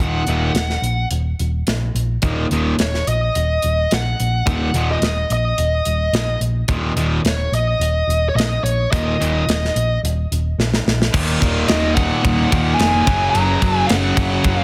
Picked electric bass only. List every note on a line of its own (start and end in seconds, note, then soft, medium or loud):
0.00 0.21 D#1 medium
0.27 0.49 D#1 medium
0.54 0.76 D#1 medium
0.82 1.04 A#1 medium
1.11 1.32 D#1 medium
1.40 1.61 D#1 medium
1.67 1.89 A#1 medium
1.94 2.16 A#1 medium
2.22 2.44 D#1 medium
2.51 2.72 D#1 medium
2.80 3.01 D#1 medium
3.07 3.29 A#1 medium
3.35 3.57 D#1 medium
3.64 3.85 D#1 medium
3.92 4.13 A#1 medium
4.20 4.41 A#1 medium
4.47 4.68 D#1 medium
4.74 4.95 D#1 medium
5.02 5.23 D#1 medium
5.30 5.52 A#1 medium
5.58 5.79 D#1 medium
5.86 6.07 D#1 medium
6.13 6.35 A#1 medium
6.40 6.62 A#1 medium
6.68 6.90 D#1 medium
6.96 7.18 D#1 medium
7.25 7.46 D#1 medium
7.52 7.74 A#1 medium
7.79 8.01 D#1 medium
8.07 8.29 D#1 medium
8.35 8.57 A#1 medium
8.63 8.85 A#1 medium
8.93 9.14 D#1 medium
9.21 9.42 D#1 medium
9.48 9.69 D#1 medium
9.76 9.97 A#1 medium
10.03 10.24 D#1 medium
10.32 10.53 D#1 medium
10.58 10.80 A#1 medium
10.87 11.08 A#1 medium
11.14 11.35 D#1 loud
11.42 11.62 D#1 medium
11.70 12.11 D#1 medium
12.25 12.45 D#1 medium
12.52 12.73 D#2 medium
12.79 13.00 F1 medium
13.07 13.28 F#1 medium
13.35 13.55 F#1 medium
13.62 13.82 F#1 medium
13.90 14.11 F#1 medium
14.17 14.38 F#1 medium
14.44 14.64 F#1 medium